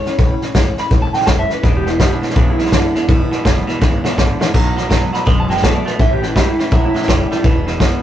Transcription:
Already playing: C#5
0.05 A3 C#4 E4, muted upright bass stroke, snare
0.18 A1 A2 E3 A3 C#4 E4, kick, snare
0.41 A3 C#4 E4, muted upright bass stroke, snare
0.54 A1 E3 A3 C#4 E4, kick, snare, hi-hat pedal
0.77 A3 C#4 E4 B5, muted upright bass stroke, snare
0.90 G#1 A2 E3 A3 C#4 E4, kick, snare
1.02 A5
1.14 A3 C#4 E4 G5, muted upright bass stroke, snare
1.20 snare
1.26 F#1 E3 A3 C#4 E4 A5, kick, snare, hi-hat pedal
1.38 E5
1.50 A3 C#4 E4 B4, snare
1.63 E1 E2 B2 E3 G#3 B3 E4 D5, kick, snare
1.77 G4
1.85 E2 B2 E3 G#3 B3 E4, snare
1.99 E2 B2 E3 G#3 B3 E4 G4, kick, snare, hi-hat pedal
2.13 D4
2.22 E2 B2 E3 G#3 B3 E4, muted upright bass stroke, snare
2.29 snare
2.36 B1 E2 B2 C#3 E3 G#3 B3 D4 E4, kick, snare
2.50 E4
2.58 E2 C#3 E3 G#3 B3 E4, snare
2.65 snare
2.72 E2 D3 E3 G#3 B3 E4, kick, snare, hi-hat pedal
2.95 E2 D3 E3 G#3 B3 E4, muted upright bass stroke, snare
3.08 E1 E2 B2 E3 G#3 B3 E4, kick, snare
3.30 E2 B2 E3 G#3 B3 E4, muted upright bass stroke, snare
3.44 F#1 E2 B2 E3 G#3 B3 E4, kick, snare, hi-hat pedal
3.67 E2 B2 E3 G#3 B3 E4, snare
3.80 G#1 E2 B2 C#3 E3 G#3 B3 E4, kick, snare
4.03 E2 C#3 E3 G#3 B3 E4, muted upright bass stroke, snare
4.17 A1 E2 D3 E3 G#3 B3 E4, kick, snare, hi-hat pedal
4.40 E2 D3 E3 G#3 B3 E4, muted upright bass stroke, snare
4.54 B1 B2 F#3 B3 D#4 F#4, kick, snare, splash
4.76 B2 F#3 B3 D#4 F#4, snare
4.89 B2 F#3 B3 D#4 F#4, kick, snare, hi-hat pedal
5.12 B2 F#3 B3 D#4 F#4 B5, muted upright bass stroke, snare
5.25 F#1 B2 F#3 G#3 B3 D#4 F#4, kick, snare
5.40 A5
5.48 B2 G#3 B3 D#4 F#4 G5, snare
5.57 snare
5.62 B2 F#3 A3 B3 D#4 F#4 A5, kick, snare, hi-hat pedal
5.76 D5
5.85 B2 A3 B3 D#4 F#4 B4, muted upright bass stroke, snare
5.99 A1 A2 E3 A3 C#4 E4 E5, kick, snare
6.13 G4
6.22 A2 E3 A3 C#4 E4, snare
6.35 A2 E3 A3 C#4 E4 G4, kick, snare, hi-hat pedal
6.49 E4
6.58 A2 E3 A3 C#4 E4, muted upright bass stroke, snare
6.71 G#1 A2 E3 F#3 A3 C#4 E4, kick, snare
6.85 E4
6.94 A2 F#3 A3 C#4 E4, muted upright bass stroke, snare
7.02 snare
7.08 F#1 A2 E3 G3 A3 C#4 E4, kick, snare, hi-hat pedal
7.31 A2 G3 A3 C#4 E4, snare
7.44 E1 E2 B2 E3 G#3 B3 E4, kick, snare
7.66 E2 B2 E3 G#3 B3 E4, snare
7.80 E2 B2 E3 G#3 B3 E4, kick, snare, hi-hat pedal

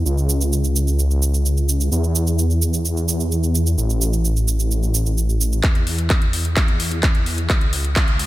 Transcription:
0.05 C#2, shaker
0.18 shaker
0.29 shaker
0.41 shaker
0.53 shaker
0.64 shaker
0.76 shaker
0.88 shaker
0.99 shaker
1.11 shaker
1.22 shaker
1.34 shaker
1.46 shaker
1.57 shaker
1.69 shaker
1.81 shaker
1.92 E2, shaker
2.04 shaker
2.15 shaker
2.27 shaker
2.39 shaker
2.50 shaker
2.62 shaker
2.74 shaker
2.85 shaker
2.97 shaker
3.09 shaker
3.20 shaker
3.32 shaker
3.43 shaker
3.55 shaker
3.67 shaker
3.78 A1, shaker
3.90 shaker
4.02 shaker
4.13 shaker
4.25 shaker
4.36 shaker
4.48 shaker
4.60 shaker
4.71 shaker
4.83 shaker
4.95 shaker
5.06 shaker
5.18 shaker
5.29 shaker
5.41 shaker
5.53 shaker
5.63 E2, kick, clap, closed hi-hat
5.75 closed hi-hat
5.87 open hi-hat
5.98 closed hi-hat
6.10 kick, clap, closed hi-hat
6.22 closed hi-hat
6.33 open hi-hat
6.45 closed hi-hat
6.57 kick, clap, closed hi-hat
6.68 closed hi-hat
6.80 open hi-hat
6.91 closed hi-hat
7.03 kick, clap, closed hi-hat
7.15 closed hi-hat
7.26 open hi-hat
7.38 closed hi-hat
7.50 C#2, kick, clap, closed hi-hat
7.61 closed hi-hat
7.73 open hi-hat
7.84 closed hi-hat
7.96 kick, clap, closed hi-hat
8.08 closed hi-hat
8.19 open hi-hat

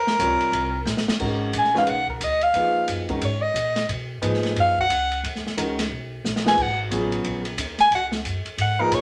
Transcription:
Already playing: D#2 A#4
0.07 snare
0.19 C#2 C3 G3 F4 A#4 C#5, hi-hat pedal, ride
0.39 muted upright bass stroke, ride
0.52 C2, ride
0.85 A#1, snare, hi-hat pedal
0.97 snare
1.07 muted upright bass stroke, snare
1.19 G#1 D#3 G#3 C#4 F#4 A#4, kick, crash
1.52 A#1, hi-hat pedal, ride
1.59 G#5
1.64 snare
1.74 D#3 G#3 C#4 F#4 B4 F5, snare
1.86 B1 F#5, ride
2.08 A#4, kick
2.20 D2 D#5, hi-hat pedal, ride
2.41 F5, ride
2.54 D#2 A#2 F3 D#4 G#4 B4, ride
2.88 F#2, hi-hat pedal, ride
3.09 D#3 G#3 C#4 F#4 A#4, kick, ride
3.21 G#2, ride
3.25 C#5
3.42 D#5
3.54 A#2, hi-hat pedal, ride
3.76 snare, ride
3.89 B2, ride
4.22 G#2 A#2 F3 D#4 G#4 B4, hi-hat pedal, ride
4.34 snare
4.43 snare, ride
4.56 F#2, ride
4.60 F5
4.77 F#5, kick
4.89 C#2, hi-hat pedal, ride
5.11 ride
5.23 D#2, ride
5.35 snare
5.44 muted upright bass stroke, snare
5.57 C#2 D#3 G#3 C#4 F#4 A#4, hi-hat pedal, ride
5.79 snare, ride
5.91 B1
6.24 A#1, snare, hi-hat pedal
6.36 snare
6.44 F3 A#3 D#4 G#4 B4 G#5, snare
6.57 G#1, kick, crash
6.62 F#5
6.90 A1 C#3 F#3 B3 F4 G#4, hi-hat pedal, ride
7.12 ride
7.24 A#1, ride
7.45 ride
7.57 D#2, hi-hat pedal, ride
7.78 G#5, snare, ride
7.91 C#2, ride
7.95 F#5
8.12 snare
8.25 F#2, hi-hat pedal, ride
8.45 muted upright bass stroke, ride
8.58 G#2 F#5, ride
8.79 A#2 F3 D#4 G#4 A#4 B4
8.91 A#2 C#5, hi-hat pedal, ride

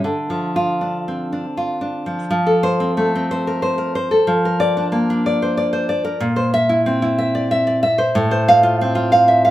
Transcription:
0.04 D3
0.30 F3
0.56 F4
0.81 D4
1.08 C4
1.32 D4
1.57 F4
1.81 D4
2.06 F3
2.30 F3
2.47 A4
2.63 C5
2.80 C4
2.97 A3
3.15 C4
3.31 C5
3.47 A#4
3.62 C5
3.78 A#4
3.95 C5
4.11 A4
4.27 F3
4.45 A#4
4.60 D5
4.77 D4
4.92 A#3
5.10 D4
5.26 D5
5.42 C5
5.57 D5
5.73 C5
5.89 D5
6.05 A#4
6.20 A#2
6.36 C5
6.54 E5
6.69 E4
6.86 C4
7.02 E4
7.19 E5
7.35 D5
7.51 E5
7.67 D5
7.83 E5
7.98 C5
8.15 A2
8.31 C5
8.48 F5
8.63 F4
8.81 C4
8.95 F4
9.12 F5
9.28 E5
9.45 F5

